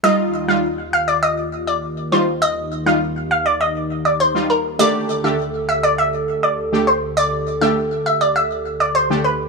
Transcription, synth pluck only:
0.04 0.29 D#5 loud
0.48 0.61 F5 medium
0.93 1.06 F5 medium
1.08 1.20 D5 medium
1.23 1.35 D#5 medium
1.67 1.80 D5 medium
2.12 2.25 C5 medium
2.42 2.67 D#5 loud
2.86 2.99 F5 medium
3.31 3.43 F5 medium
3.46 3.58 D5 medium
3.61 3.73 D#5 medium
4.05 4.18 D5 medium
4.20 4.33 C5 medium
4.50 4.62 A#4 medium
4.79 5.05 D5 loud
5.24 5.37 E5 medium
5.69 5.81 E5 medium
5.83 5.96 D5 medium
5.98 6.11 E5 medium
6.43 6.56 D5 medium
6.87 7.00 C5 medium
7.17 7.42 D5 loud
7.62 7.74 E5 medium
8.06 8.19 E5 medium
8.21 8.34 D5 medium
8.36 8.48 E5 medium
8.80 8.93 D5 medium
8.95 9.08 C5 medium
9.24 9.37 B4 medium

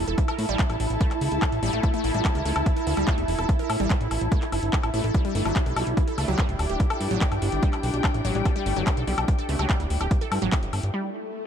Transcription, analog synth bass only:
0.08 0.15 E1 medium
0.39 0.46 A2 medium
0.49 0.56 A1 medium
0.70 0.77 A1 medium
0.80 0.87 A1 loud
0.90 0.98 A1 medium
1.21 1.29 C#2 medium
1.32 1.39 C#2 medium
1.52 1.60 A1 medium
1.63 1.70 A1 medium
1.73 1.80 A1 medium
2.04 2.11 A1 loud
2.14 2.22 A1 medium
2.35 2.42 C#2 medium
2.45 2.53 C#2 loud
2.56 2.63 C#2 medium
2.87 2.94 D2 medium
2.97 3.05 D2 medium
3.18 3.25 E1 medium
3.28 3.36 E1 medium
3.39 3.46 E1 medium
3.70 3.77 A2 medium
3.80 3.87 A1 medium
4.01 4.08 A1 medium
4.11 4.18 A1 loud
4.21 4.29 A1 medium
4.52 4.60 G1 medium
4.63 4.70 G1 medium
4.83 4.91 A1 medium
4.94 5.01 A1 medium
5.04 5.11 A1 medium
5.35 5.42 G1 medium
5.45 5.53 G1 medium
5.66 5.74 B1 medium
5.76 5.84 B1 loud
5.87 5.94 B1 medium
6.18 6.25 C#2 medium
6.28 6.36 C#2 medium
6.49 6.56 D1 medium
6.59 6.67 D1 medium
6.70 6.77 D1 medium
7.01 7.08 G2 medium
7.11 7.18 A1 medium
7.32 7.39 G1 medium
7.42 7.49 G1 loud
7.52 7.60 G1 medium
7.83 7.91 B1 medium
7.94 8.01 B1 medium
8.14 8.22 A1 medium
8.25 8.32 A1 medium
8.35 8.43 A1 medium
8.66 8.74 G1 medium
8.76 8.84 G1 medium
8.97 9.05 B1 medium
9.07 9.15 B1 loud
9.18 9.25 B1 medium
9.49 9.56 C#2 medium
9.59 9.67 C#2 medium
9.80 9.87 D1 medium
9.90 9.98 D1 medium
10.01 10.08 D1 medium
10.32 10.39 G2 medium
10.42 10.49 A1 medium
10.63 10.70 G1 medium
10.73 10.80 G1 loud
10.83 10.91 G1 medium

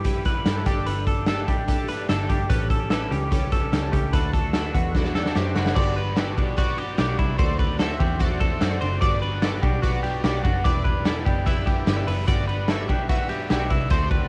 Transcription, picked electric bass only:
0.00 0.43 G2 medium
0.46 0.63 G2 medium
0.66 0.84 G1 medium
0.86 1.48 G1 loud
1.48 2.06 A1 medium
2.10 2.27 G1 medium
2.30 2.47 G1 medium
2.50 3.08 A1 loud
3.12 3.69 C#2 medium
3.72 3.90 C#2 loud
3.93 4.10 C#2 medium
4.14 4.71 D2 loud
4.75 5.33 E2 loud
5.36 5.53 F#2 medium
5.56 5.73 F#1 medium
5.76 6.38 G1 loud
6.38 6.96 B1 medium
6.99 7.16 B1 loud
7.19 7.36 C2 medium
7.39 7.97 D2 loud
8.01 8.58 E2 medium
8.62 8.79 F#2 loud
8.82 8.99 F#1 loud
9.02 9.60 G1 loud
9.63 10.21 B1 medium
10.24 10.41 B1 loud
10.45 10.62 F#1 medium
10.65 11.23 E1 loud
11.27 11.84 F#1 medium
11.87 12.05 G1 loud
12.08 12.25 F#1 medium
12.28 12.89 G1 loud
12.89 13.47 B1 medium
13.51 13.68 B1 loud
13.71 13.88 C2 medium
13.91 14.28 D2 loud

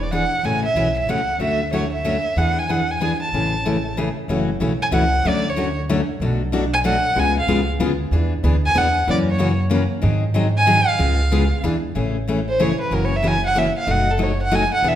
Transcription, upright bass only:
0.00 0.24 E1 medium
0.43 0.69 A1 medium
0.75 1.03 B1 medium
1.07 1.35 C#2 medium
1.39 2.16 D2 medium
2.36 3.13 E2 medium
3.32 4.09 A1 medium
4.28 4.54 F#1 medium
4.60 4.87 B1 medium
4.92 5.19 C#2 medium
5.24 6.01 D2 medium
6.20 6.97 B1 medium
7.16 7.41 C#2 medium
7.47 7.75 C#2 medium
7.79 8.07 D2 medium
8.11 8.37 E2 medium
8.43 8.71 D2 medium
8.76 9.03 E2 medium
9.08 9.84 F#2 medium
10.03 10.80 G#2 medium
11.00 11.51 C#2 medium
11.63 11.89 E2 medium
11.95 12.72 A1 medium
12.91 13.68 F#1 medium
13.87 14.64 F#1 medium
14.82 14.95 E1 medium

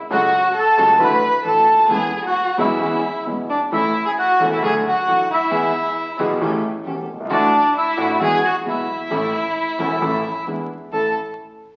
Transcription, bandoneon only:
0.12 0.53 F#4 medium
0.12 0.58 F#5 loud
0.59 0.99 A4 medium
0.59 1.03 A5 loud
1.04 1.44 B4 medium
1.04 1.44 B5 loud
1.48 1.89 A4 medium
1.48 1.88 A5 loud
1.92 2.17 G#4 medium
1.92 2.16 G#5 loud
2.18 2.25 G#5 medium
2.27 2.57 F#4 medium
2.27 2.57 F#5 medium
2.60 3.24 E4 medium
2.60 3.23 E5 medium
3.50 3.60 D4 medium
3.50 3.60 D5 medium
3.73 4.04 E4 medium
3.73 4.04 E5 loud
4.07 4.12 G#4 medium
4.07 4.13 G#5 medium
4.19 4.49 F#4 medium
4.19 4.50 F#5 medium
4.54 4.63 E4 medium
4.54 4.63 E5 medium
4.65 4.74 G#4 medium
4.65 4.75 G#5 loud
4.88 5.28 F#4 medium
4.88 5.29 F#5 loud
5.33 6.17 E4 medium
5.33 6.17 E5 loud
7.33 7.73 D4 medium
7.33 7.74 D5 loud
7.78 8.18 E4 medium
7.78 8.19 E5 loud
8.23 8.43 G#4 medium
8.23 8.43 G#5 loud
8.47 8.56 F#4 medium
8.47 8.56 F#5 loud
8.68 10.44 E4 medium
8.68 10.45 E5 medium
10.94 11.14 A5 medium

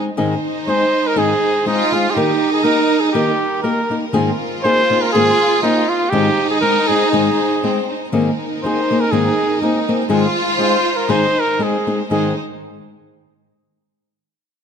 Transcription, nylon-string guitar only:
0.17 0.34 G#2 medium
0.17 0.34 D#3 medium
0.17 0.34 G#3 medium
0.17 0.34 C4 medium
0.17 0.34 D#4 medium
0.17 0.34 G#4 medium
0.67 0.84 G#3 medium
0.67 0.84 C4 medium
0.67 0.84 D#4 medium
0.67 0.85 G#4 medium
1.16 1.32 G#2 medium
1.16 1.33 D#3 medium
1.16 1.33 G#3 medium
1.16 1.33 C4 medium
1.16 1.33 D#4 medium
1.16 1.33 G#4 medium
1.66 1.82 G#3 medium
1.66 1.82 C4 medium
1.66 1.82 D#4 medium
1.66 1.83 G#4 medium
1.92 2.06 G#3 medium
1.92 2.06 C4 soft
1.92 2.06 D#4 medium
1.92 2.06 G#4 medium
2.16 2.31 D#3 medium
2.16 2.31 A#3 medium
2.16 2.32 D#4 medium
2.16 2.32 G4 medium
2.16 2.32 A#4 medium
2.63 2.80 A#3 medium
2.63 2.80 D#4 medium
2.63 2.80 G4 medium
2.63 2.80 A#4 medium
3.14 3.30 D#3 medium
3.14 3.30 A#3 medium
3.14 3.30 D#4 medium
3.14 3.30 G4 medium
3.14 3.30 A#4 medium
3.64 3.80 A#3 medium
3.64 3.80 D#4 medium
3.64 3.80 G4 medium
3.64 3.80 A#4 medium
3.90 4.04 A#3 soft
3.90 4.04 D#4 soft
3.90 4.05 G4 soft
3.90 4.05 A#4 medium
4.13 4.30 G#2 medium
4.13 4.30 D#3 medium
4.13 4.30 A#3 medium
4.13 4.30 C4 medium
4.13 4.30 D#4 medium
4.13 4.30 G#4 medium
4.64 4.80 A#3 medium
4.64 4.80 C4 medium
4.64 4.80 D#4 medium
4.64 4.81 G#4 medium
4.90 5.04 A#3 medium
4.90 5.04 C4 medium
4.90 5.04 D#4 medium
4.90 5.05 G#4 medium
5.14 5.30 G#2 medium
5.14 5.30 D#3 medium
5.14 5.30 A#3 medium
5.14 5.30 C4 medium
5.14 5.30 D#4 medium
5.14 5.30 G#4 medium
5.63 5.79 A#3 medium
5.63 5.79 C4 medium
5.63 5.80 D#4 medium
5.63 5.80 G#4 medium
6.12 6.28 G#2 medium
6.12 6.29 D#3 medium
6.12 6.28 G#3 medium
6.12 6.29 C4 medium
6.12 6.29 D#4 medium
6.12 6.29 G#4 medium
6.61 6.78 G#3 medium
6.61 6.78 C4 medium
6.61 6.78 D#4 medium
6.61 6.78 G#4 medium
6.89 7.03 G#3 soft
6.89 7.03 C4 medium
6.89 7.03 D#4 medium
6.89 7.04 G#4 soft
7.13 7.28 G#2 medium
7.13 7.29 D#3 medium
7.13 7.29 G#3 medium
7.13 7.29 C4 medium
7.13 7.29 D#4 medium
7.13 7.29 G#4 medium
7.63 7.79 G#3 medium
7.63 7.79 C4 medium
7.63 7.79 D#4 medium
7.63 7.80 G#4 medium
8.12 8.29 G#2 medium
8.12 8.29 D#3 medium
8.12 8.29 A#3 medium
8.12 8.29 C4 medium
8.12 8.29 D#4 medium
8.12 8.29 G#4 medium
8.64 8.79 A#3 medium
8.64 8.80 C4 medium
8.64 8.80 D#4 medium
8.64 8.80 G#4 medium
8.91 9.04 A#3 medium
8.91 9.04 C4 soft
8.91 9.04 D#4 soft
8.91 9.04 G#4 medium
9.12 9.28 G#2 medium
9.12 9.28 D#3 medium
9.12 9.28 A#3 medium
9.12 9.29 C4 medium
9.12 9.29 D#4 medium
9.12 9.29 G#4 medium
9.62 9.77 A#3 medium
9.62 9.78 C4 medium
9.62 9.78 D#4 medium
9.62 9.78 G#4 medium
9.89 10.02 A#3 medium
9.89 10.02 C4 medium
9.89 10.02 D#4 medium
9.89 10.02 G#4 medium
10.09 10.25 G#2 medium
10.09 10.26 D#3 medium
10.09 10.26 G#3 medium
10.09 10.26 C4 medium
10.09 10.26 D#4 medium
10.09 10.26 G#4 medium
10.59 10.75 G#3 medium
10.59 10.76 C4 medium
10.59 10.76 D#4 medium
10.59 10.76 G#4 medium
11.09 11.25 G#2 medium
11.09 11.25 D#3 medium
11.09 11.25 G#3 medium
11.09 11.25 C4 medium
11.09 11.25 D#4 medium
11.09 11.25 G#4 medium
11.59 11.76 G#3 soft
11.59 11.76 C4 medium
11.59 11.76 D#4 medium
11.59 11.76 G#4 medium
11.87 12.01 G#3 medium
11.87 12.01 C4 soft
11.87 12.01 D#4 medium
11.87 12.01 G#4 medium
12.10 12.32 G#2 medium
12.10 12.32 D#3 medium
12.10 12.32 G#3 medium
12.10 12.32 C4 medium
12.10 12.33 D#4 medium
12.10 12.33 G#4 medium

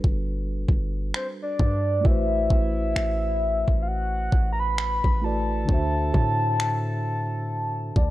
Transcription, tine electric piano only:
0.00 1.99 G3 medium
0.00 2.00 D4 medium
0.00 2.01 F#4 medium
0.00 2.03 A4 medium
0.00 2.04 B4 medium
2.01 5.17 A3 medium
2.01 5.18 E4 medium
2.06 5.19 F#4 medium
2.06 5.21 B4 medium
2.10 5.22 C5 medium
5.22 5.68 A3 soft
5.22 5.68 E4 soft
5.22 5.68 F#4 soft
5.22 5.70 B4 soft
5.26 5.70 D5 medium
5.65 8.11 D3 medium
5.65 8.11 D4 medium
5.70 8.11 F#4 medium
5.70 8.11 C5 medium
5.74 8.11 E5 medium
7.97 8.11 D5 medium

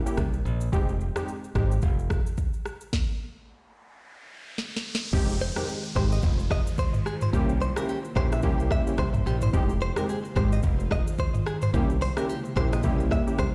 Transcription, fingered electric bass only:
0.18 0.41 C2 medium
0.45 0.68 A#1 medium
0.73 1.09 F1 loud
1.55 1.78 G#1 medium
1.83 2.19 F1 loud
5.13 5.50 F1 loud
5.96 6.19 G#1 medium
6.23 6.60 F1 loud
7.33 7.70 C2 loud
8.16 8.43 A#1 medium
8.43 8.80 C2 loud
8.98 9.21 C2 medium
9.26 9.49 A#1 medium
9.53 9.90 F1 loud
10.36 10.59 G#1 medium
10.63 11.00 F1 loud
11.74 12.10 C2 loud
12.56 12.84 A#1 medium
12.84 13.20 C2 loud
13.39 13.55 C2 medium

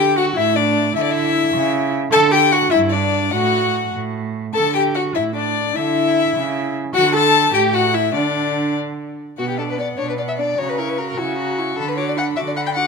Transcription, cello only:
0.00 0.27 D3 medium
0.36 0.86 A2 medium
0.96 1.44 D3 medium
1.54 2.03 C#3 medium
2.12 2.62 D3 medium
2.72 3.23 G2 medium
3.33 3.84 A2 medium
3.94 4.45 A2 medium
4.56 5.06 D3 medium
5.16 5.66 A2 medium
5.77 6.26 D3 medium
6.35 6.84 C#3 medium
6.95 7.50 D3 medium
7.54 8.16 A2 medium
8.15 9.18 D3 medium
9.38 9.92 B2 soft
9.98 10.51 B2 medium
10.58 11.11 C#3 soft
11.17 11.70 C#3 medium
11.78 12.30 D3 medium
12.38 12.87 D3 medium

